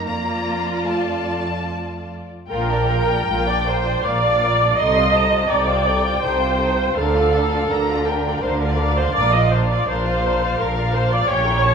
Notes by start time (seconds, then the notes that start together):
0.05 F2 A#3 F4 D5 A#5
0.86 A3 A5
2.50 A#1 A#2 F4 A#4 G5
2.70 D4 D5
2.89 F4 A#4
3.09 D4 D5
3.27 A#1 A#2 F4 A#4
3.47 D4 D5
3.65 F4 A#4 C5
3.84 D4 D5
4.04 A#1 A#2 F4 A#4 D5 F5
4.22 D4 D5
4.41 F4 A#4
4.60 D4 D5
4.78 C2 C3 D#4 A4 D#5 C6
4.96 F4 C5
5.13 D#4 A4 A5
5.31 F4 C5
5.48 C2 C3 D#4 A4 D5 G5
5.66 F4 C5
5.84 D#4 A4
6.03 F4 C5
6.20 C2 C3 D#4 A4 C5
6.40 F4 C5
6.58 D#4 A4
6.77 F4 C5
6.94 D2 D3 D4 A4 A#4 F5
7.14 F4 D5
7.32 D4 A#4
7.51 F4 D5
7.69 D2 D3 D4 A#4 A#5
7.88 F4 D5
8.06 D4 A#4 G5
8.25 F4 D5
8.42 D2 D3 D4 A#4 C5 F5
8.61 F4 A#4 D5
8.78 D4 A#4 D5
8.97 F4 C5 D5
9.14 A#1 A#2 D4 A#4 D5
9.32 F4 D5 D#5
9.51 D4 A#4 C5
9.70 F4 D5
9.88 A#1 A#2 D4 A#4 C5 F5
10.05 F4 D5
10.23 D4 A#4
10.41 F4 D5
10.59 A#1 A#2 D4 A#4
10.76 F4 D5
10.94 D4 A#4 C5
11.11 F4 D5
11.28 A#1 A#2 C#4 G4 C#5 G5
11.46 E4 A#4
11.63 C#4 G4 A5